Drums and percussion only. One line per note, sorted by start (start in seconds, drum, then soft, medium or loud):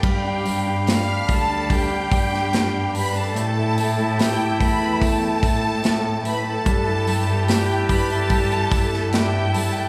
0.03 kick medium
0.03 crash medium
0.46 hi-hat pedal medium
0.46 open hi-hat medium
0.87 snare loud
0.87 hi-hat pedal medium
0.87 open hi-hat medium
1.28 kick medium
1.28 hi-hat pedal medium
1.28 open hi-hat medium
1.70 kick medium
1.70 hi-hat pedal medium
1.70 open hi-hat medium
2.11 kick medium
2.11 hi-hat pedal medium
2.11 open hi-hat medium
2.34 snare soft
2.53 snare loud
2.53 hi-hat pedal medium
2.53 open hi-hat medium
2.95 hi-hat pedal medium
2.95 open hi-hat medium
3.36 hi-hat pedal medium
3.36 open hi-hat medium
3.78 hi-hat pedal medium
3.78 open hi-hat medium
4.19 snare loud
4.19 hi-hat pedal medium
4.19 open hi-hat medium
4.60 kick medium
4.60 hi-hat pedal medium
4.60 open hi-hat medium
5.02 kick medium
5.02 hi-hat pedal medium
5.02 open hi-hat medium
5.43 kick loud
5.43 hi-hat pedal medium
5.43 open hi-hat medium
5.84 snare loud
5.84 hi-hat pedal medium
5.84 open hi-hat medium
6.25 hi-hat pedal medium
6.25 open hi-hat medium
6.66 kick medium
6.66 hi-hat pedal medium
6.66 open hi-hat medium
7.07 hi-hat pedal medium
7.07 open hi-hat medium
7.48 snare loud
7.48 hi-hat pedal medium
7.48 open hi-hat medium
7.89 kick medium
7.89 hi-hat pedal medium
7.89 open hi-hat medium
8.10 open hi-hat soft
8.30 kick medium
8.30 hi-hat pedal medium
8.30 open hi-hat medium
8.51 hi-hat pedal medium
8.71 kick loud
8.71 hi-hat pedal medium
8.71 open hi-hat medium
8.94 snare soft
9.13 snare loud
9.13 hi-hat pedal medium
9.13 open hi-hat medium
9.54 hi-hat pedal medium
9.54 open hi-hat medium